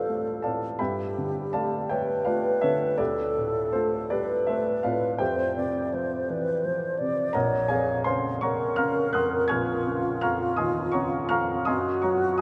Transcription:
Already playing: D2 A2 G3 A3 F4 A4 B4 D5 F5
0.09 A3
0.42 A2 A4 D5 F5 A5
0.78 G2 G4 B4 E5 G5 B5
1.18 D3
1.53 A3 A4 D5 F5 A5
1.89 G3 G4 B4 C#5 E5 G5
2.25 A3 F4 B4 D5 F5
2.61 D3 A4 C#5 E5
2.98 D2 G4 A4 B4 D5
3.38 A2
3.72 A3 F4 A4 C5
4.10 G3 G4 B4 D5
4.47 A3 A4 C5 E5
4.83 A2 F4 B4 D5 F5
5.18 F2 G4 C5 E5 G5
5.56 C3 D5
5.94 F3 C5
6.30 E3 B4
6.65 F3 C5
6.99 C3 D5
7.33 A#1 A#4 C#5 D#5 F#5 A#5
7.68 F2 G#4 C#5 F5 G#5
8.04 C#3 C5 F5 G#5 C6
8.41 C3 A#4 C#5 F#5 A#5 C#6
8.76 C#3 F5 A#5 C#6 F6
9.13 F2 F#5 C6 D#6 F#6
9.48 A#1 G#5 C#6 F6 G#6
9.52 F4
9.86 C#3
10.21 F2 F5 A#5 C#6 F6
10.56 D#2 D#5 G#5 C6 D#6
10.92 C#3 C#5 F#5 A#5 C#6
11.29 F2 F5 A#5 C#6 F6
11.65 F#2 F#4 D#5 G#5 C6 D#6
12.02 F#3 C#5 F#5 A#5 C#6
12.38 D#6

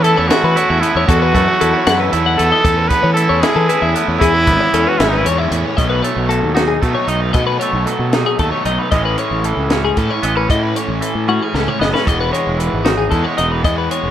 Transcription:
Already playing: E2 E3 B3
0.03 A3 C#4 E4 A4, closed hi-hat
0.17 E2 C#5
0.28 E2 A3 C#4 E4 F#4 A4 E5, snare, closed hi-hat
0.44 E3 B4
0.56 A3 C#4 E4 A4 C#5, closed hi-hat
0.70 E2 E5
0.81 A3 B3 C#4 E4 A4, closed hi-hat
0.95 E2 C#5
1.08 E2 F#3 B3 D#4 F#4 A4, kick, closed hi-hat
1.22 B4
1.34 F#2 F#3 A3 B3 D#4 A4, kick, closed hi-hat
1.48 C#5
1.61 E2 F#3 B3 D#4 E4 A4, closed hi-hat
1.74 C#5
1.87 E2 F#2 F#3 B3 D#4 A4 F#5, snare, closed hi-hat
2.00 B4
2.12 E2 F#3 B3 D#4 E4 A4 C#5, closed hi-hat
2.26 F#5
2.38 E2 F#3 A3 B3 D#4 A4, closed hi-hat
2.52 D#5
2.64 E2 A3 C#4 E4 A4, kick, closed hi-hat
2.77 B4
2.88 A3 B3 C#4 E4 A4 B4, kick, closed hi-hat
3.03 E3 C#5
3.14 A3 C#4 E4 A4, closed hi-hat
3.18 A4
3.29 E2 C#5
3.40 E2 C#4 E4 G#4 A4 E5, snare, closed hi-hat
3.45 A3
3.56 E3 A4
3.69 A3 C#4 E4 A4 B4, closed hi-hat
3.82 E2 E5
3.94 A3 B3 C#4 E4 A4, closed hi-hat
4.08 E2 C#5
4.19 E2 E3 G#3 C#4 E4 G#4, kick, closed hi-hat
4.34 B4
4.47 G#1 E3 G#3 B3 C#4 E4, kick, closed hi-hat
4.61 C#5
4.73 E2 E3 G#3 C#4 E4 A4, closed hi-hat
4.87 F#4 B4
4.99 G#1 F#2 E3 G#3 C#4 E4 E5, snare, closed hi-hat
5.09 D#4
5.13 B4
5.18 E4
5.26 E2 G#2 E3 G#3 C#4 E4 C#5, closed hi-hat
5.38 E5
5.51 E2 A2 E3 G#3 C#4 E4, closed hi-hat
5.65 C#5
5.77 B1 B2 F#3 A3 D#5, kick, closed hi-hat
5.81 D#4
5.90 B4
6.02 A3 C#5, closed hi-hat
6.16 B1
6.29 F#3 A4, closed hi-hat
6.43 D#2
6.55 D#4 F#4, snare, closed hi-hat
6.68 G#4
6.82 B2 F#3 A3 D#4 A4, kick, closed hi-hat
6.95 C#5
7.08 B1 D#4 D#5, closed hi-hat
7.21 B4
7.33 B2 F#3 A3 D#5, kick, closed hi-hat
7.37 D#4
7.47 B4
7.60 A3 C#5, closed hi-hat
7.73 B1
7.86 F#3 A4, closed hi-hat
7.99 B2
8.13 D#4 F#4, snare, closed hi-hat
8.26 G#4
8.39 D#2 B2 F#3 A3 D#4 A4, kick, closed hi-hat
8.52 C#5
8.65 B1 D#4 D#5, closed hi-hat
8.79 B4
8.92 A1 A2 E3 G#3 A3 C#4 E4 G#4 D#5, kick, closed hi-hat
9.05 B4
9.18 C#5, closed hi-hat
9.31 A1
9.44 E3 A4, closed hi-hat
9.57 C#2
9.70 C#4 F#4, snare, closed hi-hat
9.85 G#4
9.96 A2 E3 A3 C#4 E4 A4, kick, closed hi-hat
10.11 C#5
10.23 A1 B3 D#5, closed hi-hat
10.35 C#4 B4
10.49 A2 E3 A3 C#4 E4 D#5, kick, closed hi-hat
10.63 B4
10.76 C#5, closed hi-hat
10.88 A1
11.01 E3 A4, closed hi-hat
11.15 A2
11.28 C#4 F#4, high tom
11.43 G#4
11.53 C#2 A2 E3 A3 C#4 E4 A4, snare
11.68 C#5, mid tom
11.79 F#1 B3 D#5, snare
11.93 C#4 B4, snare
12.05 E1 E2 E3 G#3 B3 D#5, kick, closed hi-hat
12.09 E4
12.21 B4
12.32 G#3 C#5, closed hi-hat
12.47 E1
12.58 E3 B4, closed hi-hat
12.73 G#1
12.85 D#4 F#4, snare, closed hi-hat
12.98 G#4
13.11 E2 E3 G#3 B3 A4, kick, closed hi-hat
13.15 E4
13.24 C#5
13.37 E1 D#4 D#5, closed hi-hat
13.52 B4
13.63 E2 E3 G#3 B3 E4 D#5, kick, closed hi-hat
13.78 B4
13.91 G#3 C#5, closed hi-hat
14.03 E1

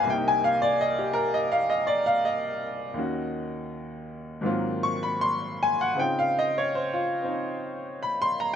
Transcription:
Already playing: G2 B4 D5 D#5
0.03 C2 C3
0.10 A#3 G5
0.14 D#4
0.28 G#5
0.44 F5
0.62 D5
0.81 D#5
0.99 G4
1.13 A#4
1.34 D#5
1.52 F5
1.70 D#5
1.87 D5
2.06 F5
2.25 D#5
2.94 D#2 D#3 C#4
2.99 F#4
4.41 G#2 D#3 F#3 A#3 C4
4.46 F4
4.83 C#6
5.03 B5
5.21 C6
5.63 G#5
5.81 F#5
5.95 C#3 C4 D#4
5.99 F4 G5
6.19 F5
6.39 D#5
6.58 C#5
6.75 C5
6.93 F4
7.22 C4 D#4
8.03 B5
8.22 C6
8.40 A#5

